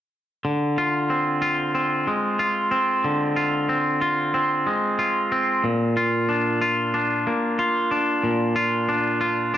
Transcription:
0, 0, Header, 1, 2, 480
1, 0, Start_track
1, 0, Tempo, 649351
1, 333, Time_signature, 4, 2, 24, 8
1, 7079, End_track
2, 0, Start_track
2, 0, Title_t, "Clean electric guitar"
2, 0, Program_c, 0, 27
2, 331, Note_on_c, 0, 50, 43
2, 577, Note_on_c, 0, 65, 41
2, 812, Note_on_c, 0, 60, 36
2, 1045, Note_off_c, 0, 65, 0
2, 1048, Note_on_c, 0, 65, 42
2, 1281, Note_off_c, 0, 60, 0
2, 1290, Note_on_c, 0, 60, 38
2, 1532, Note_off_c, 0, 50, 0
2, 1534, Note_on_c, 0, 56, 36
2, 1766, Note_off_c, 0, 65, 0
2, 1769, Note_on_c, 0, 65, 42
2, 1996, Note_off_c, 0, 60, 0
2, 2005, Note_on_c, 0, 60, 42
2, 2251, Note_on_c, 0, 50, 44
2, 2484, Note_off_c, 0, 65, 0
2, 2487, Note_on_c, 0, 65, 42
2, 2719, Note_off_c, 0, 60, 0
2, 2728, Note_on_c, 0, 60, 40
2, 2733, Note_off_c, 0, 56, 0
2, 2964, Note_off_c, 0, 65, 0
2, 2967, Note_on_c, 0, 65, 43
2, 3199, Note_off_c, 0, 60, 0
2, 3208, Note_on_c, 0, 60, 47
2, 3449, Note_on_c, 0, 56, 40
2, 3451, Note_off_c, 0, 50, 0
2, 3684, Note_off_c, 0, 65, 0
2, 3687, Note_on_c, 0, 65, 46
2, 3922, Note_off_c, 0, 60, 0
2, 3931, Note_on_c, 0, 60, 41
2, 4168, Note_on_c, 0, 46, 43
2, 4170, Note_off_c, 0, 56, 0
2, 4172, Note_off_c, 0, 60, 0
2, 4408, Note_off_c, 0, 65, 0
2, 4411, Note_on_c, 0, 65, 42
2, 4648, Note_on_c, 0, 62, 39
2, 4887, Note_off_c, 0, 65, 0
2, 4890, Note_on_c, 0, 65, 38
2, 5127, Note_off_c, 0, 62, 0
2, 5130, Note_on_c, 0, 62, 44
2, 5370, Note_off_c, 0, 46, 0
2, 5374, Note_on_c, 0, 58, 37
2, 5607, Note_off_c, 0, 65, 0
2, 5610, Note_on_c, 0, 65, 52
2, 5840, Note_off_c, 0, 62, 0
2, 5849, Note_on_c, 0, 62, 39
2, 6088, Note_on_c, 0, 46, 42
2, 6317, Note_off_c, 0, 65, 0
2, 6326, Note_on_c, 0, 65, 49
2, 6560, Note_off_c, 0, 62, 0
2, 6569, Note_on_c, 0, 62, 40
2, 6573, Note_off_c, 0, 58, 0
2, 6797, Note_off_c, 0, 65, 0
2, 6806, Note_on_c, 0, 65, 43
2, 7043, Note_off_c, 0, 62, 0
2, 7052, Note_on_c, 0, 62, 39
2, 7079, Note_off_c, 0, 46, 0
2, 7079, Note_off_c, 0, 62, 0
2, 7079, Note_off_c, 0, 65, 0
2, 7079, End_track
0, 0, End_of_file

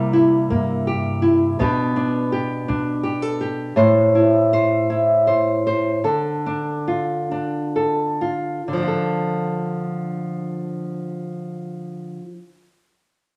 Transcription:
0, 0, Header, 1, 3, 480
1, 0, Start_track
1, 0, Key_signature, -1, "minor"
1, 0, Tempo, 726392
1, 1061, Time_signature, 6, 3, 24, 8
1, 2983, Tempo, 763359
1, 3943, Tempo, 816327
1, 4423, Tempo, 867052
1, 4903, Tempo, 934579
1, 5383, Tempo, 974026
1, 7702, End_track
2, 0, Start_track
2, 0, Title_t, "Nylon-string guitar"
2, 0, Program_c, 0, 24
2, 0, Note_on_c, 0, 48, 57
2, 0, Note_on_c, 0, 55, 54
2, 0, Note_on_c, 0, 58, 50
2, 0, Note_on_c, 0, 64, 54
2, 0, Note_on_c, 0, 70, 59
2, 85, Note_off_c, 0, 64, 0
2, 88, Note_on_c, 0, 64, 58
2, 325, Note_off_c, 0, 58, 0
2, 333, Note_on_c, 0, 58, 52
2, 573, Note_off_c, 0, 70, 0
2, 575, Note_on_c, 0, 67, 49
2, 803, Note_off_c, 0, 64, 0
2, 806, Note_on_c, 0, 64, 53
2, 1034, Note_off_c, 0, 55, 0
2, 1051, Note_on_c, 0, 47, 59
2, 1055, Note_off_c, 0, 67, 0
2, 1055, Note_on_c, 0, 59, 54
2, 1056, Note_off_c, 0, 58, 0
2, 1059, Note_off_c, 0, 48, 0
2, 1061, Note_off_c, 0, 64, 0
2, 1062, Note_on_c, 0, 62, 49
2, 1063, Note_on_c, 0, 67, 52
2, 1068, Note_on_c, 0, 71, 55
2, 1288, Note_off_c, 0, 62, 0
2, 1296, Note_on_c, 0, 62, 52
2, 1527, Note_off_c, 0, 67, 0
2, 1535, Note_on_c, 0, 67, 57
2, 1765, Note_off_c, 0, 62, 0
2, 1773, Note_on_c, 0, 62, 49
2, 1997, Note_off_c, 0, 67, 0
2, 2002, Note_off_c, 0, 71, 0
2, 2005, Note_on_c, 0, 67, 47
2, 2129, Note_off_c, 0, 67, 0
2, 2129, Note_on_c, 0, 69, 36
2, 2251, Note_on_c, 0, 67, 48
2, 2466, Note_off_c, 0, 47, 0
2, 2467, Note_off_c, 0, 62, 0
2, 2467, Note_off_c, 0, 67, 0
2, 2468, Note_off_c, 0, 59, 0
2, 2485, Note_on_c, 0, 45, 60
2, 2489, Note_off_c, 0, 69, 0
2, 2491, Note_on_c, 0, 72, 59
2, 2742, Note_on_c, 0, 64, 48
2, 2980, Note_off_c, 0, 72, 0
2, 2994, Note_on_c, 0, 72, 63
2, 3219, Note_off_c, 0, 64, 0
2, 3225, Note_on_c, 0, 64, 48
2, 3452, Note_off_c, 0, 72, 0
2, 3459, Note_on_c, 0, 72, 51
2, 3699, Note_off_c, 0, 72, 0
2, 3708, Note_on_c, 0, 72, 58
2, 3907, Note_off_c, 0, 45, 0
2, 3918, Note_off_c, 0, 64, 0
2, 3920, Note_off_c, 0, 72, 0
2, 3942, Note_on_c, 0, 50, 54
2, 3944, Note_on_c, 0, 69, 51
2, 4191, Note_on_c, 0, 62, 46
2, 4434, Note_on_c, 0, 65, 53
2, 4665, Note_off_c, 0, 62, 0
2, 4676, Note_on_c, 0, 62, 45
2, 4904, Note_off_c, 0, 69, 0
2, 4920, Note_on_c, 0, 69, 43
2, 5144, Note_off_c, 0, 65, 0
2, 5153, Note_on_c, 0, 65, 48
2, 5354, Note_off_c, 0, 50, 0
2, 5362, Note_off_c, 0, 62, 0
2, 5362, Note_off_c, 0, 65, 0
2, 5363, Note_off_c, 0, 69, 0
2, 5393, Note_on_c, 0, 50, 46
2, 5418, Note_on_c, 0, 53, 52
2, 5441, Note_on_c, 0, 62, 45
2, 5467, Note_on_c, 0, 65, 42
2, 5490, Note_on_c, 0, 69, 41
2, 7117, Note_off_c, 0, 50, 0
2, 7143, Note_off_c, 0, 53, 0
2, 7165, Note_off_c, 0, 62, 0
2, 7191, Note_off_c, 0, 65, 0
2, 7215, Note_off_c, 0, 69, 0
2, 7702, End_track
3, 0, Start_track
3, 0, Title_t, "Upright bass"
3, 0, Program_c, 1, 32
3, 0, Note_on_c, 1, 48, 79
3, 311, Note_off_c, 1, 48, 0
3, 333, Note_on_c, 1, 43, 74
3, 1030, Note_off_c, 1, 43, 0
3, 1059, Note_on_c, 1, 47, 82
3, 1753, Note_off_c, 1, 47, 0
3, 1778, Note_on_c, 1, 47, 76
3, 2472, Note_off_c, 1, 47, 0
3, 7702, End_track
0, 0, End_of_file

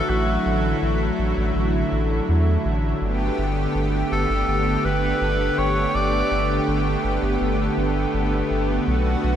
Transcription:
0, 0, Header, 1, 4, 480
1, 0, Start_track
1, 0, Tempo, 731707
1, 62, Time_signature, 4, 2, 24, 8
1, 6141, End_track
2, 0, Start_track
2, 0, Title_t, "Tenor saxophone"
2, 0, Program_c, 0, 66
2, 0, Note_on_c, 0, 69, 100
2, 61, Note_on_c, 0, 66, 92
2, 71, Note_off_c, 0, 69, 0
2, 542, Note_off_c, 0, 66, 0
2, 2704, Note_on_c, 0, 69, 93
2, 3182, Note_on_c, 0, 71, 102
2, 3191, Note_off_c, 0, 69, 0
2, 3663, Note_on_c, 0, 73, 103
2, 3673, Note_off_c, 0, 71, 0
2, 3903, Note_on_c, 0, 74, 116
2, 3913, Note_off_c, 0, 73, 0
2, 4383, Note_off_c, 0, 74, 0
2, 6141, End_track
3, 0, Start_track
3, 0, Title_t, "Analog synth pad"
3, 0, Program_c, 1, 89
3, 0, Note_on_c, 1, 50, 84
3, 0, Note_on_c, 1, 54, 75
3, 0, Note_on_c, 1, 57, 78
3, 0, Note_on_c, 1, 64, 92
3, 1957, Note_off_c, 1, 54, 0
3, 1957, Note_off_c, 1, 57, 0
3, 1957, Note_off_c, 1, 64, 0
3, 1982, Note_on_c, 1, 59, 77
3, 1982, Note_on_c, 1, 67, 93
3, 1984, Note_on_c, 1, 57, 77
3, 5796, Note_off_c, 1, 67, 0
3, 5825, Note_on_c, 1, 66, 92
3, 6141, Note_off_c, 1, 50, 0
3, 6141, Note_off_c, 1, 57, 0
3, 6141, Note_off_c, 1, 59, 0
3, 6141, Note_off_c, 1, 66, 0
3, 6141, End_track
4, 0, Start_track
4, 0, Title_t, "Analog synth bass"
4, 0, Program_c, 2, 38
4, 61, Note_on_c, 2, 33, 102
4, 248, Note_off_c, 2, 33, 0
4, 302, Note_on_c, 2, 33, 83
4, 489, Note_off_c, 2, 33, 0
4, 541, Note_on_c, 2, 33, 81
4, 728, Note_off_c, 2, 33, 0
4, 781, Note_on_c, 2, 33, 79
4, 875, Note_off_c, 2, 33, 0
4, 902, Note_on_c, 2, 33, 100
4, 996, Note_off_c, 2, 33, 0
4, 1021, Note_on_c, 2, 33, 94
4, 1208, Note_off_c, 2, 33, 0
4, 1261, Note_on_c, 2, 33, 85
4, 1448, Note_off_c, 2, 33, 0
4, 1501, Note_on_c, 2, 40, 84
4, 1688, Note_off_c, 2, 40, 0
4, 1742, Note_on_c, 2, 33, 87
4, 1928, Note_off_c, 2, 33, 0
4, 1980, Note_on_c, 2, 31, 100
4, 2168, Note_off_c, 2, 31, 0
4, 2221, Note_on_c, 2, 31, 83
4, 2408, Note_off_c, 2, 31, 0
4, 2462, Note_on_c, 2, 31, 83
4, 2649, Note_off_c, 2, 31, 0
4, 2703, Note_on_c, 2, 31, 83
4, 2796, Note_off_c, 2, 31, 0
4, 2821, Note_on_c, 2, 31, 101
4, 2915, Note_off_c, 2, 31, 0
4, 2941, Note_on_c, 2, 31, 94
4, 3128, Note_off_c, 2, 31, 0
4, 3182, Note_on_c, 2, 31, 83
4, 3369, Note_off_c, 2, 31, 0
4, 3422, Note_on_c, 2, 31, 97
4, 3608, Note_off_c, 2, 31, 0
4, 3663, Note_on_c, 2, 31, 89
4, 3849, Note_off_c, 2, 31, 0
4, 3902, Note_on_c, 2, 31, 102
4, 4089, Note_off_c, 2, 31, 0
4, 4142, Note_on_c, 2, 31, 82
4, 4329, Note_off_c, 2, 31, 0
4, 4383, Note_on_c, 2, 31, 81
4, 4569, Note_off_c, 2, 31, 0
4, 4622, Note_on_c, 2, 31, 81
4, 4715, Note_off_c, 2, 31, 0
4, 4742, Note_on_c, 2, 31, 98
4, 4835, Note_off_c, 2, 31, 0
4, 4863, Note_on_c, 2, 31, 92
4, 5049, Note_off_c, 2, 31, 0
4, 5101, Note_on_c, 2, 31, 86
4, 5288, Note_off_c, 2, 31, 0
4, 5342, Note_on_c, 2, 31, 95
4, 5528, Note_off_c, 2, 31, 0
4, 5583, Note_on_c, 2, 31, 89
4, 5769, Note_off_c, 2, 31, 0
4, 5823, Note_on_c, 2, 35, 101
4, 6009, Note_off_c, 2, 35, 0
4, 6062, Note_on_c, 2, 35, 83
4, 6141, Note_off_c, 2, 35, 0
4, 6141, End_track
0, 0, End_of_file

